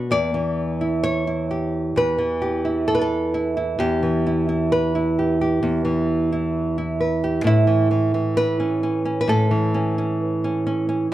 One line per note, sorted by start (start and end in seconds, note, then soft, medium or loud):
0.00 0.11 B2 medium
0.00 0.34 B3 medium
0.00 0.14 F#4 soft
0.00 0.11 B4 soft
0.11 1.96 E2 medium
0.11 1.03 D5 loud
0.34 2.18 E3 medium
0.81 1.27 E4 soft
1.03 1.96 C#5 medium
1.27 2.64 E4 soft
1.51 2.40 G4 soft
1.96 3.77 E2 medium
1.96 2.94 B4 medium
2.18 4.02 E3 medium
2.42 2.87 G4 soft
2.65 3.34 E4 soft
2.88 3.00 A4 medium
2.95 3.94 B4 medium
3.01 3.79 A4 medium
3.34 3.56 E4 soft
3.57 4.26 E4 soft
3.79 5.61 E2 medium
3.79 5.18 G4 medium
4.03 5.84 E3 medium
4.27 4.48 E4 soft
4.49 4.95 E4 soft
4.72 6.99 B4 medium
4.95 6.32 E4 soft
5.19 5.40 G4 soft
5.41 7.22 G4 soft
5.63 7.44 E2 medium
5.85 7.67 E3 medium
6.32 6.78 E4 soft
6.78 7.46 E4 soft
7.01 7.47 B4 soft
7.24 7.41 G4 soft
7.44 9.26 A2 medium
7.44 8.59 E4 medium
7.67 7.90 E3 medium
7.91 8.14 E3 soft
8.14 9.50 E3 soft
8.37 9.20 B4 medium
8.60 8.82 C#4 soft
8.83 9.04 C#4 soft
9.05 9.73 C#4 soft
9.21 10.20 B4 medium
9.28 11.06 A2 medium
9.28 11.12 A4 medium
9.51 11.14 E3 medium
9.74 9.97 C#4 soft
9.98 10.43 C#4 soft
10.44 10.65 C#4 soft
10.67 10.88 C#4 soft
10.89 11.06 C#4 soft